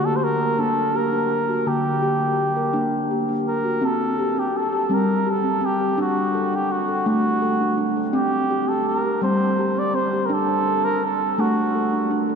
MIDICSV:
0, 0, Header, 1, 3, 480
1, 0, Start_track
1, 0, Tempo, 720288
1, 1113, Time_signature, 6, 3, 24, 8
1, 8231, End_track
2, 0, Start_track
2, 0, Title_t, "Muted trumpet"
2, 0, Program_c, 0, 59
2, 34, Note_on_c, 0, 69, 87
2, 107, Note_on_c, 0, 72, 62
2, 117, Note_off_c, 0, 69, 0
2, 159, Note_on_c, 0, 70, 82
2, 169, Note_off_c, 0, 72, 0
2, 399, Note_on_c, 0, 69, 80
2, 409, Note_off_c, 0, 70, 0
2, 641, Note_on_c, 0, 70, 76
2, 651, Note_off_c, 0, 69, 0
2, 1117, Note_on_c, 0, 67, 80
2, 1127, Note_off_c, 0, 70, 0
2, 2073, Note_off_c, 0, 67, 0
2, 2319, Note_on_c, 0, 70, 73
2, 2567, Note_on_c, 0, 69, 83
2, 2577, Note_off_c, 0, 70, 0
2, 2927, Note_on_c, 0, 67, 71
2, 2937, Note_off_c, 0, 69, 0
2, 3044, Note_on_c, 0, 69, 74
2, 3054, Note_off_c, 0, 67, 0
2, 3291, Note_on_c, 0, 70, 69
2, 3301, Note_off_c, 0, 69, 0
2, 3533, Note_on_c, 0, 69, 72
2, 3543, Note_off_c, 0, 70, 0
2, 3766, Note_on_c, 0, 67, 83
2, 3776, Note_off_c, 0, 69, 0
2, 3998, Note_off_c, 0, 67, 0
2, 4007, Note_on_c, 0, 66, 79
2, 4368, Note_on_c, 0, 67, 76
2, 4378, Note_off_c, 0, 66, 0
2, 4477, Note_on_c, 0, 66, 67
2, 4487, Note_off_c, 0, 67, 0
2, 4713, Note_off_c, 0, 66, 0
2, 4718, Note_on_c, 0, 66, 83
2, 5227, Note_off_c, 0, 66, 0
2, 5431, Note_on_c, 0, 67, 85
2, 5787, Note_on_c, 0, 69, 73
2, 5797, Note_off_c, 0, 67, 0
2, 5917, Note_on_c, 0, 70, 77
2, 5926, Note_off_c, 0, 69, 0
2, 6148, Note_off_c, 0, 70, 0
2, 6152, Note_on_c, 0, 72, 86
2, 6524, Note_on_c, 0, 74, 77
2, 6534, Note_off_c, 0, 72, 0
2, 6631, Note_on_c, 0, 72, 91
2, 6641, Note_off_c, 0, 74, 0
2, 6837, Note_on_c, 0, 70, 57
2, 6847, Note_off_c, 0, 72, 0
2, 6884, Note_on_c, 0, 69, 95
2, 6894, Note_off_c, 0, 70, 0
2, 7226, Note_on_c, 0, 70, 82
2, 7236, Note_off_c, 0, 69, 0
2, 7349, Note_off_c, 0, 70, 0
2, 7363, Note_on_c, 0, 69, 75
2, 7597, Note_on_c, 0, 66, 71
2, 7607, Note_off_c, 0, 69, 0
2, 8136, Note_off_c, 0, 66, 0
2, 8231, End_track
3, 0, Start_track
3, 0, Title_t, "Steel tongue drum"
3, 0, Program_c, 1, 114
3, 0, Note_on_c, 1, 50, 81
3, 33, Note_on_c, 1, 58, 56
3, 273, Note_off_c, 1, 58, 0
3, 273, Note_on_c, 1, 70, 54
3, 284, Note_off_c, 1, 50, 0
3, 391, Note_on_c, 1, 58, 64
3, 391, Note_on_c, 1, 62, 80
3, 394, Note_off_c, 1, 70, 0
3, 629, Note_on_c, 1, 67, 57
3, 632, Note_off_c, 1, 58, 0
3, 740, Note_off_c, 1, 62, 0
3, 748, Note_on_c, 1, 62, 53
3, 751, Note_off_c, 1, 67, 0
3, 990, Note_off_c, 1, 62, 0
3, 990, Note_on_c, 1, 66, 55
3, 1107, Note_on_c, 1, 50, 75
3, 1111, Note_off_c, 1, 66, 0
3, 1111, Note_on_c, 1, 58, 63
3, 1349, Note_on_c, 1, 67, 70
3, 1352, Note_off_c, 1, 58, 0
3, 1467, Note_on_c, 1, 58, 57
3, 1470, Note_off_c, 1, 67, 0
3, 1709, Note_off_c, 1, 58, 0
3, 1710, Note_on_c, 1, 70, 58
3, 1721, Note_off_c, 1, 50, 0
3, 1822, Note_on_c, 1, 62, 83
3, 1828, Note_on_c, 1, 58, 66
3, 1830, Note_off_c, 1, 70, 0
3, 2069, Note_off_c, 1, 58, 0
3, 2073, Note_on_c, 1, 67, 53
3, 2183, Note_off_c, 1, 62, 0
3, 2191, Note_on_c, 1, 62, 62
3, 2192, Note_off_c, 1, 67, 0
3, 2427, Note_on_c, 1, 66, 56
3, 2431, Note_off_c, 1, 62, 0
3, 2542, Note_on_c, 1, 60, 91
3, 2549, Note_off_c, 1, 66, 0
3, 2791, Note_on_c, 1, 67, 71
3, 2901, Note_off_c, 1, 60, 0
3, 2909, Note_on_c, 1, 60, 54
3, 2910, Note_off_c, 1, 67, 0
3, 3147, Note_on_c, 1, 67, 60
3, 3149, Note_off_c, 1, 60, 0
3, 3261, Note_on_c, 1, 55, 91
3, 3268, Note_off_c, 1, 67, 0
3, 3269, Note_on_c, 1, 60, 79
3, 3509, Note_off_c, 1, 60, 0
3, 3509, Note_on_c, 1, 67, 65
3, 3626, Note_on_c, 1, 60, 67
3, 3629, Note_off_c, 1, 67, 0
3, 3672, Note_off_c, 1, 55, 0
3, 3731, Note_off_c, 1, 60, 0
3, 3739, Note_on_c, 1, 60, 80
3, 3867, Note_on_c, 1, 67, 54
3, 3947, Note_off_c, 1, 60, 0
3, 3983, Note_on_c, 1, 62, 96
3, 3988, Note_off_c, 1, 67, 0
3, 4229, Note_on_c, 1, 69, 72
3, 4340, Note_off_c, 1, 62, 0
3, 4348, Note_on_c, 1, 62, 65
3, 4349, Note_off_c, 1, 69, 0
3, 4588, Note_off_c, 1, 62, 0
3, 4588, Note_on_c, 1, 69, 64
3, 4706, Note_on_c, 1, 57, 99
3, 4706, Note_on_c, 1, 62, 73
3, 4708, Note_off_c, 1, 69, 0
3, 4946, Note_on_c, 1, 69, 66
3, 4948, Note_off_c, 1, 62, 0
3, 5068, Note_off_c, 1, 69, 0
3, 5070, Note_on_c, 1, 62, 67
3, 5115, Note_off_c, 1, 57, 0
3, 5173, Note_off_c, 1, 62, 0
3, 5181, Note_on_c, 1, 62, 75
3, 5309, Note_on_c, 1, 69, 61
3, 5389, Note_off_c, 1, 62, 0
3, 5419, Note_on_c, 1, 60, 99
3, 5429, Note_off_c, 1, 69, 0
3, 5668, Note_on_c, 1, 67, 73
3, 5778, Note_off_c, 1, 60, 0
3, 5786, Note_on_c, 1, 60, 55
3, 5789, Note_off_c, 1, 67, 0
3, 6028, Note_off_c, 1, 60, 0
3, 6029, Note_on_c, 1, 67, 59
3, 6141, Note_on_c, 1, 55, 92
3, 6149, Note_off_c, 1, 67, 0
3, 6153, Note_on_c, 1, 60, 71
3, 6390, Note_on_c, 1, 67, 60
3, 6392, Note_off_c, 1, 60, 0
3, 6508, Note_on_c, 1, 60, 65
3, 6510, Note_off_c, 1, 67, 0
3, 6553, Note_off_c, 1, 55, 0
3, 6612, Note_off_c, 1, 60, 0
3, 6620, Note_on_c, 1, 60, 74
3, 6751, Note_on_c, 1, 67, 58
3, 6829, Note_off_c, 1, 60, 0
3, 6860, Note_on_c, 1, 62, 98
3, 6871, Note_off_c, 1, 67, 0
3, 7115, Note_on_c, 1, 69, 67
3, 7223, Note_off_c, 1, 62, 0
3, 7231, Note_on_c, 1, 62, 58
3, 7233, Note_off_c, 1, 69, 0
3, 7470, Note_on_c, 1, 69, 61
3, 7472, Note_off_c, 1, 62, 0
3, 7585, Note_on_c, 1, 57, 93
3, 7590, Note_on_c, 1, 62, 74
3, 7591, Note_off_c, 1, 69, 0
3, 7829, Note_on_c, 1, 69, 58
3, 7832, Note_off_c, 1, 62, 0
3, 7950, Note_on_c, 1, 62, 61
3, 7951, Note_off_c, 1, 69, 0
3, 7997, Note_off_c, 1, 57, 0
3, 8059, Note_off_c, 1, 62, 0
3, 8067, Note_on_c, 1, 62, 83
3, 8192, Note_on_c, 1, 69, 60
3, 8231, Note_off_c, 1, 62, 0
3, 8231, Note_off_c, 1, 69, 0
3, 8231, End_track
0, 0, End_of_file